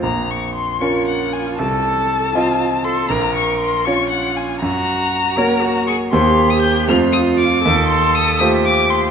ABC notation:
X:1
M:6/8
L:1/16
Q:3/8=79
K:Bbm
V:1 name="Violin"
b2 d'2 c'2 d'2 g2 a2 | =a8- a2 c'2 | b2 d'2 c'2 d'2 g2 a2 | b8- b2 d'2 |
[K:Fmix] c'3 e' g'2 f'2 e'2 d'2- | d'2 c'2 e'2 e'2 d'2 c'2 |]
V:2 name="Cello"
z6 F6 | =A6 F2 F2 A2 | B6 F6 | G6 B2 G2 A2 |
[K:Fmix] G6 F6 | A6 G6 |]
V:3 name="Grand piano"
B,,,6 [DFB]6 | C,,6 [CFe]6 | B,,,6 [DFd]6 | G,,6 [B,Gd]6 |
[K:Fmix] [E,,B,Gc]6 [F,,A,Fc]6 | E,,6 [A,Fc]6 |]